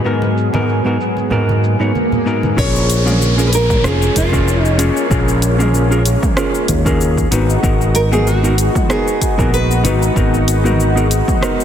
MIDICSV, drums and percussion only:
0, 0, Header, 1, 2, 480
1, 0, Start_track
1, 0, Tempo, 631579
1, 42, Time_signature, 4, 2, 24, 8
1, 8849, End_track
2, 0, Start_track
2, 0, Title_t, "Drums"
2, 45, Note_on_c, 9, 69, 38
2, 121, Note_off_c, 9, 69, 0
2, 166, Note_on_c, 9, 62, 52
2, 176, Note_on_c, 9, 69, 27
2, 242, Note_off_c, 9, 62, 0
2, 252, Note_off_c, 9, 69, 0
2, 285, Note_on_c, 9, 69, 66
2, 361, Note_off_c, 9, 69, 0
2, 408, Note_on_c, 9, 62, 56
2, 412, Note_on_c, 9, 63, 78
2, 416, Note_on_c, 9, 69, 29
2, 484, Note_off_c, 9, 62, 0
2, 488, Note_off_c, 9, 63, 0
2, 492, Note_off_c, 9, 69, 0
2, 526, Note_on_c, 9, 69, 36
2, 602, Note_off_c, 9, 69, 0
2, 656, Note_on_c, 9, 69, 28
2, 732, Note_off_c, 9, 69, 0
2, 765, Note_on_c, 9, 69, 68
2, 841, Note_off_c, 9, 69, 0
2, 887, Note_on_c, 9, 62, 34
2, 896, Note_on_c, 9, 69, 29
2, 963, Note_off_c, 9, 62, 0
2, 972, Note_off_c, 9, 69, 0
2, 995, Note_on_c, 9, 64, 76
2, 1005, Note_on_c, 9, 69, 39
2, 1071, Note_off_c, 9, 64, 0
2, 1081, Note_off_c, 9, 69, 0
2, 1133, Note_on_c, 9, 63, 70
2, 1136, Note_on_c, 9, 69, 26
2, 1209, Note_off_c, 9, 63, 0
2, 1212, Note_off_c, 9, 69, 0
2, 1244, Note_on_c, 9, 69, 68
2, 1320, Note_off_c, 9, 69, 0
2, 1376, Note_on_c, 9, 69, 29
2, 1452, Note_off_c, 9, 69, 0
2, 1484, Note_on_c, 9, 63, 59
2, 1486, Note_on_c, 9, 69, 38
2, 1560, Note_off_c, 9, 63, 0
2, 1562, Note_off_c, 9, 69, 0
2, 1612, Note_on_c, 9, 64, 72
2, 1615, Note_on_c, 9, 69, 27
2, 1688, Note_off_c, 9, 64, 0
2, 1691, Note_off_c, 9, 69, 0
2, 1724, Note_on_c, 9, 69, 74
2, 1800, Note_off_c, 9, 69, 0
2, 1849, Note_on_c, 9, 63, 83
2, 1856, Note_on_c, 9, 69, 31
2, 1925, Note_off_c, 9, 63, 0
2, 1932, Note_off_c, 9, 69, 0
2, 1961, Note_on_c, 9, 36, 124
2, 1964, Note_on_c, 9, 69, 42
2, 2037, Note_off_c, 9, 36, 0
2, 2040, Note_off_c, 9, 69, 0
2, 2095, Note_on_c, 9, 69, 31
2, 2171, Note_off_c, 9, 69, 0
2, 2201, Note_on_c, 9, 42, 90
2, 2205, Note_on_c, 9, 69, 77
2, 2277, Note_off_c, 9, 42, 0
2, 2281, Note_off_c, 9, 69, 0
2, 2332, Note_on_c, 9, 45, 80
2, 2336, Note_on_c, 9, 69, 34
2, 2408, Note_off_c, 9, 45, 0
2, 2412, Note_off_c, 9, 69, 0
2, 2446, Note_on_c, 9, 69, 41
2, 2522, Note_off_c, 9, 69, 0
2, 2575, Note_on_c, 9, 69, 31
2, 2651, Note_off_c, 9, 69, 0
2, 2680, Note_on_c, 9, 42, 96
2, 2685, Note_on_c, 9, 69, 83
2, 2756, Note_off_c, 9, 42, 0
2, 2761, Note_off_c, 9, 69, 0
2, 2811, Note_on_c, 9, 45, 78
2, 2813, Note_on_c, 9, 36, 109
2, 2816, Note_on_c, 9, 69, 32
2, 2887, Note_off_c, 9, 45, 0
2, 2889, Note_off_c, 9, 36, 0
2, 2892, Note_off_c, 9, 69, 0
2, 2920, Note_on_c, 9, 37, 74
2, 2925, Note_on_c, 9, 69, 44
2, 2996, Note_off_c, 9, 37, 0
2, 3001, Note_off_c, 9, 69, 0
2, 3057, Note_on_c, 9, 69, 31
2, 3133, Note_off_c, 9, 69, 0
2, 3161, Note_on_c, 9, 42, 92
2, 3162, Note_on_c, 9, 36, 58
2, 3166, Note_on_c, 9, 69, 78
2, 3237, Note_off_c, 9, 42, 0
2, 3238, Note_off_c, 9, 36, 0
2, 3242, Note_off_c, 9, 69, 0
2, 3293, Note_on_c, 9, 36, 96
2, 3295, Note_on_c, 9, 69, 33
2, 3369, Note_off_c, 9, 36, 0
2, 3371, Note_off_c, 9, 69, 0
2, 3405, Note_on_c, 9, 69, 44
2, 3481, Note_off_c, 9, 69, 0
2, 3536, Note_on_c, 9, 69, 30
2, 3612, Note_off_c, 9, 69, 0
2, 3640, Note_on_c, 9, 42, 95
2, 3644, Note_on_c, 9, 69, 76
2, 3716, Note_off_c, 9, 42, 0
2, 3720, Note_off_c, 9, 69, 0
2, 3775, Note_on_c, 9, 69, 33
2, 3851, Note_off_c, 9, 69, 0
2, 3882, Note_on_c, 9, 36, 120
2, 3885, Note_on_c, 9, 69, 42
2, 3958, Note_off_c, 9, 36, 0
2, 3961, Note_off_c, 9, 69, 0
2, 4016, Note_on_c, 9, 69, 33
2, 4092, Note_off_c, 9, 69, 0
2, 4121, Note_on_c, 9, 42, 85
2, 4125, Note_on_c, 9, 69, 78
2, 4197, Note_off_c, 9, 42, 0
2, 4201, Note_off_c, 9, 69, 0
2, 4252, Note_on_c, 9, 45, 75
2, 4257, Note_on_c, 9, 69, 37
2, 4328, Note_off_c, 9, 45, 0
2, 4333, Note_off_c, 9, 69, 0
2, 4365, Note_on_c, 9, 69, 41
2, 4441, Note_off_c, 9, 69, 0
2, 4498, Note_on_c, 9, 69, 34
2, 4574, Note_off_c, 9, 69, 0
2, 4602, Note_on_c, 9, 42, 96
2, 4606, Note_on_c, 9, 69, 83
2, 4678, Note_off_c, 9, 42, 0
2, 4682, Note_off_c, 9, 69, 0
2, 4732, Note_on_c, 9, 45, 73
2, 4733, Note_on_c, 9, 36, 103
2, 4736, Note_on_c, 9, 69, 33
2, 4808, Note_off_c, 9, 45, 0
2, 4809, Note_off_c, 9, 36, 0
2, 4812, Note_off_c, 9, 69, 0
2, 4840, Note_on_c, 9, 37, 80
2, 4844, Note_on_c, 9, 69, 47
2, 4916, Note_off_c, 9, 37, 0
2, 4920, Note_off_c, 9, 69, 0
2, 4975, Note_on_c, 9, 69, 33
2, 5051, Note_off_c, 9, 69, 0
2, 5079, Note_on_c, 9, 42, 93
2, 5083, Note_on_c, 9, 36, 60
2, 5084, Note_on_c, 9, 69, 81
2, 5155, Note_off_c, 9, 42, 0
2, 5159, Note_off_c, 9, 36, 0
2, 5160, Note_off_c, 9, 69, 0
2, 5213, Note_on_c, 9, 36, 106
2, 5216, Note_on_c, 9, 69, 35
2, 5289, Note_off_c, 9, 36, 0
2, 5292, Note_off_c, 9, 69, 0
2, 5326, Note_on_c, 9, 69, 49
2, 5402, Note_off_c, 9, 69, 0
2, 5453, Note_on_c, 9, 36, 64
2, 5458, Note_on_c, 9, 69, 33
2, 5529, Note_off_c, 9, 36, 0
2, 5534, Note_off_c, 9, 69, 0
2, 5562, Note_on_c, 9, 42, 87
2, 5566, Note_on_c, 9, 69, 84
2, 5638, Note_off_c, 9, 42, 0
2, 5642, Note_off_c, 9, 69, 0
2, 5698, Note_on_c, 9, 69, 35
2, 5774, Note_off_c, 9, 69, 0
2, 5802, Note_on_c, 9, 36, 127
2, 5806, Note_on_c, 9, 69, 47
2, 5878, Note_off_c, 9, 36, 0
2, 5882, Note_off_c, 9, 69, 0
2, 5938, Note_on_c, 9, 69, 32
2, 6014, Note_off_c, 9, 69, 0
2, 6040, Note_on_c, 9, 42, 87
2, 6045, Note_on_c, 9, 69, 79
2, 6116, Note_off_c, 9, 42, 0
2, 6121, Note_off_c, 9, 69, 0
2, 6173, Note_on_c, 9, 45, 76
2, 6177, Note_on_c, 9, 69, 34
2, 6249, Note_off_c, 9, 45, 0
2, 6253, Note_off_c, 9, 69, 0
2, 6286, Note_on_c, 9, 69, 45
2, 6362, Note_off_c, 9, 69, 0
2, 6418, Note_on_c, 9, 69, 34
2, 6494, Note_off_c, 9, 69, 0
2, 6522, Note_on_c, 9, 42, 92
2, 6526, Note_on_c, 9, 69, 86
2, 6598, Note_off_c, 9, 42, 0
2, 6602, Note_off_c, 9, 69, 0
2, 6652, Note_on_c, 9, 45, 71
2, 6653, Note_on_c, 9, 36, 114
2, 6657, Note_on_c, 9, 69, 36
2, 6728, Note_off_c, 9, 45, 0
2, 6729, Note_off_c, 9, 36, 0
2, 6733, Note_off_c, 9, 69, 0
2, 6763, Note_on_c, 9, 37, 79
2, 6767, Note_on_c, 9, 69, 45
2, 6839, Note_off_c, 9, 37, 0
2, 6843, Note_off_c, 9, 69, 0
2, 6898, Note_on_c, 9, 69, 35
2, 6974, Note_off_c, 9, 69, 0
2, 7003, Note_on_c, 9, 36, 63
2, 7004, Note_on_c, 9, 42, 86
2, 7008, Note_on_c, 9, 69, 76
2, 7079, Note_off_c, 9, 36, 0
2, 7080, Note_off_c, 9, 42, 0
2, 7084, Note_off_c, 9, 69, 0
2, 7133, Note_on_c, 9, 36, 103
2, 7140, Note_on_c, 9, 69, 36
2, 7209, Note_off_c, 9, 36, 0
2, 7216, Note_off_c, 9, 69, 0
2, 7249, Note_on_c, 9, 69, 51
2, 7325, Note_off_c, 9, 69, 0
2, 7380, Note_on_c, 9, 69, 33
2, 7456, Note_off_c, 9, 69, 0
2, 7484, Note_on_c, 9, 42, 95
2, 7488, Note_on_c, 9, 69, 87
2, 7560, Note_off_c, 9, 42, 0
2, 7564, Note_off_c, 9, 69, 0
2, 7619, Note_on_c, 9, 69, 37
2, 7695, Note_off_c, 9, 69, 0
2, 7723, Note_on_c, 9, 36, 114
2, 7728, Note_on_c, 9, 69, 43
2, 7799, Note_off_c, 9, 36, 0
2, 7804, Note_off_c, 9, 69, 0
2, 7859, Note_on_c, 9, 69, 30
2, 7935, Note_off_c, 9, 69, 0
2, 7964, Note_on_c, 9, 42, 84
2, 7968, Note_on_c, 9, 69, 80
2, 8040, Note_off_c, 9, 42, 0
2, 8044, Note_off_c, 9, 69, 0
2, 8095, Note_on_c, 9, 45, 81
2, 8099, Note_on_c, 9, 69, 34
2, 8171, Note_off_c, 9, 45, 0
2, 8175, Note_off_c, 9, 69, 0
2, 8209, Note_on_c, 9, 69, 42
2, 8285, Note_off_c, 9, 69, 0
2, 8339, Note_on_c, 9, 69, 35
2, 8415, Note_off_c, 9, 69, 0
2, 8443, Note_on_c, 9, 42, 91
2, 8447, Note_on_c, 9, 69, 84
2, 8519, Note_off_c, 9, 42, 0
2, 8523, Note_off_c, 9, 69, 0
2, 8573, Note_on_c, 9, 36, 108
2, 8574, Note_on_c, 9, 45, 74
2, 8578, Note_on_c, 9, 69, 34
2, 8649, Note_off_c, 9, 36, 0
2, 8650, Note_off_c, 9, 45, 0
2, 8654, Note_off_c, 9, 69, 0
2, 8683, Note_on_c, 9, 37, 77
2, 8688, Note_on_c, 9, 69, 44
2, 8759, Note_off_c, 9, 37, 0
2, 8764, Note_off_c, 9, 69, 0
2, 8818, Note_on_c, 9, 69, 33
2, 8849, Note_off_c, 9, 69, 0
2, 8849, End_track
0, 0, End_of_file